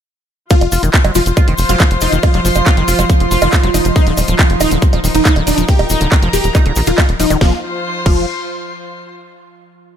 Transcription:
0.50 ambient pad F3 F4, acid bass F3, string section F4, supersaw synth F4, kick, closed hi-hat, cabasa
0.61 analog synth bass F1, closed hi-hat, high bongo
0.72 analog synth bass F1, acid bass F4, open hi-hat, cabasa
0.79 analog synth bass F1, acid bass D#3, string section C5, closed hi-hat
0.84 cabasa
0.93 kick, clap, closed hi-hat, cabasa
1.05 analog synth bass F#1, acid bass F#3, closed hi-hat, high bongo
1.15 analog synth bass F1, acid bass F3, supersaw synth F4, open hi-hat, cabasa
1.26 analog synth bass F1, closed hi-hat, cabasa
1.33 acid bass F4, string section C6, kick, closed hi-hat, high bongo
1.37 cabasa
1.48 analog synth bass F1, acid bass D#3, closed hi-hat
1.58 analog synth bass F1, open hi-hat, cabasa
1.69 analog synth bass F1, acid bass F#3, supersaw synth F4, closed hi-hat, cabasa
1.79 acid bass F3, kick, clap, closed hi-hat, high bongo, cabasa
1.91 analog synth bass F1, closed hi-hat
2.01 analog synth bass F1, supersaw synth D#4, acid bass F4, open hi-hat, cabasa
2.12 analog synth bass F1, acid bass D#3, closed hi-hat, cabasa
2.23 supersaw synth F4, kick, closed hi-hat, high bongo, cabasa
2.34 analog synth bass F1, acid bass F#3, closed hi-hat
2.45 analog synth bass F1, acid bass F3, open hi-hat, cabasa
2.55 analog synth bass F1, closed hi-hat, high bongo, cabasa
2.66 acid bass F4, kick, clap, closed hi-hat, cabasa
2.77 analog synth bass F#1, acid bass D#3, closed hi-hat
2.88 analog synth bass F1, supersaw synth F4, open hi-hat, cabasa
2.99 analog synth bass F1, acid bass F#3, closed hi-hat, high bongo, cabasa
3.10 acid bass F3, kick, closed hi-hat, cabasa
3.20 analog synth bass F1, closed hi-hat
3.31 analog synth bass F1, acid bass F4, open hi-hat, cabasa
3.41 analog synth bass F1, acid bass D#3, supersaw synth F4, closed hi-hat, high bongo, cabasa
3.52 kick, clap, closed hi-hat, cabasa
3.63 analog synth bass F1, acid bass F#3, closed hi-hat
3.74 analog synth bass F1, acid bass F3, supersaw synth D#4, open hi-hat, high bongo, cabasa
3.85 analog synth bass F1, closed hi-hat, cabasa
3.96 string section D#4, supersaw synth D#4, acid bass D#4, kick, closed hi-hat, cabasa
4.07 analog synth bass D#1, acid bass D3, closed hi-hat
4.17 analog synth bass D#1, open hi-hat, high bongo, cabasa
4.28 analog synth bass D#1, acid bass F3, string section A#4, closed hi-hat, cabasa
4.39 acid bass D#3, kick, clap, closed hi-hat, cabasa
4.50 analog synth bass F1, closed hi-hat
4.60 analog synth bass D#1, supersaw synth D#4, acid bass D#4, open hi-hat, high bongo, cabasa
4.71 analog synth bass D#1, acid bass D3, closed hi-hat, cabasa
4.82 kick, closed hi-hat, cabasa
4.93 analog synth bass D#1, acid bass F3, closed hi-hat, high bongo
5.04 analog synth bass D#1, acid bass D#3, open hi-hat, cabasa
5.15 analog synth bass D#1, supersaw synth D#4, string section A#5, closed hi-hat, cabasa
5.25 acid bass D#4, kick, clap, closed hi-hat, cabasa
5.36 analog synth bass D#1, acid bass D3, closed hi-hat, high bongo
5.47 analog synth bass D#1, supersaw synth D4, open hi-hat, cabasa
5.58 analog synth bass D#1, acid bass F3, closed hi-hat, cabasa
5.68 acid bass D#3, supersaw synth G4, kick, closed hi-hat, cabasa
5.79 analog synth bass D#1, closed hi-hat, high bongo
5.90 analog synth bass D#1, acid bass D#4, open hi-hat, cabasa
6.01 analog synth bass D#1, acid bass D3, closed hi-hat, cabasa
6.12 kick, clap, closed hi-hat, high bongo, cabasa
6.22 analog synth bass F1, acid bass F3, closed hi-hat
6.33 analog synth bass D#1, acid bass D#3, supersaw synth G4, open hi-hat, cabasa
6.44 analog synth bass D#1, closed hi-hat, cabasa
6.55 acid bass D#4, kick, clap, closed hi-hat, high bongo, cabasa
6.66 analog synth bass D#1, acid bass D3, closed hi-hat
6.76 analog synth bass A#1, acid bass D#3, open hi-hat, cabasa
6.86 analog synth bass D#1, acid bass D3, supersaw synth F4, closed hi-hat, cabasa
6.98 acid bass G3, kick, clap, closed hi-hat, high bongo, cabasa
7.09 analog synth bass D#1, closed hi-hat
7.20 analog synth bass D#1, acid bass F3, supersaw synth D#4, open hi-hat, cabasa
7.30 analog synth bass D#1, acid bass D#3, closed hi-hat, high bongo, cabasa
7.41 analog synth bass F1, acid bass F3, supersaw synth F4, string section F4, kick, snare
7.48 string section C5
7.54 string section C6
8.06 analog synth bass F1, acid bass F3, supersaw synth F4, kick, crash

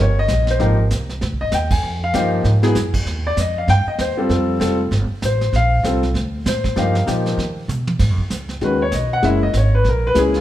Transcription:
0.00 upright bass G1, grand piano C#5
0.19 grand piano D#5
0.28 upright bass A#1, snare, hi-hat pedal
0.47 grand piano C5, snare
0.59 upright bass G#1, grand piano F3 A#3 D#4 G4 A#4, brush sweep, snare
0.91 upright bass C2, snare, hi-hat pedal
1.09 snare
1.21 upright bass D2, brush sweep, snare
1.32 upright bass C2
1.41 upright bass G#1, grand piano D#5
1.52 upright bass D#2, grand piano G5, snare, hi-hat pedal
1.71 grand piano G#5, kick, crash
1.82 upright bass F2, brush sweep
2.04 grand piano F5
2.14 upright bass G2, grand piano F3 A#3 D#4 G4 F5, snare, hi-hat pedal
2.44 upright bass G#2, snare
2.62 grand piano F#3 B3 E4 G#4, snare
2.75 upright bass F#2, snare, hi-hat pedal
2.94 kick, crash
3.05 upright bass D#2, brush sweep, snare
3.27 grand piano D5
3.37 upright bass F2, grand piano D#5, snare, hi-hat pedal
3.58 grand piano F5
3.68 upright bass G2, grand piano G5, brush sweep, snare
3.86 grand piano D#5, muted upright bass stroke
3.98 upright bass D#2, grand piano C5, snare, hi-hat pedal
4.17 grand piano G3 C4 F4 G4 A4
4.29 upright bass F2, grand piano A4, brush sweep, snare
4.60 upright bass F1, grand piano G3 C4 F4 A4, snare, hi-hat pedal
4.91 upright bass G1, brush sweep, snare
5.10 muted upright bass stroke
5.22 upright bass A1, grand piano C5, snare, hi-hat pedal
5.41 snare
5.53 upright bass A#1, grand piano F5, brush sweep, snare
5.83 upright bass C2, grand piano G3 C4 F4 A4, snare, hi-hat pedal
6.03 snare
6.14 upright bass D2, brush sweep, snare
6.46 upright bass A2, grand piano C5, snare, hi-hat pedal
6.64 kick, snare
6.76 upright bass G2, grand piano F3 A#3 D#4 G4 F5, brush sweep, snare
6.95 snare
7.07 upright bass A#2, grand piano F3 A#3 D#4 G4, snare, hi-hat pedal
7.26 snare
7.37 upright bass D#3, brush sweep, snare
7.68 upright bass B2, hi-hat pedal, mid tom
7.87 high tom
7.99 upright bass G#2, brush sweep, kick, snare, crash
8.10 upright bass F#2
8.18 upright bass D#2, kick
8.30 upright bass C#2, snare, hi-hat pedal
8.49 snare
8.61 upright bass D#2, grand piano D#3 G#3 C#4 F#4 B4, brush sweep, snare
8.82 grand piano C#5
8.92 upright bass B1, grand piano D#5, snare, hi-hat pedal
9.13 grand piano F#5
9.22 upright bass F#1, grand piano G#3 A#3 C#4 E4 E5, brush sweep, snare
9.43 grand piano D#5
9.53 upright bass G#1, grand piano C#5, snare, hi-hat pedal
9.75 grand piano B4
9.84 upright bass A#1, brush sweep, snare
9.89 grand piano A#4
10.07 grand piano B4
10.14 upright bass C#2, grand piano G#3 A#3 C#4 E4, snare, hi-hat pedal
10.19 grand piano G#4
10.34 grand piano F4, snare

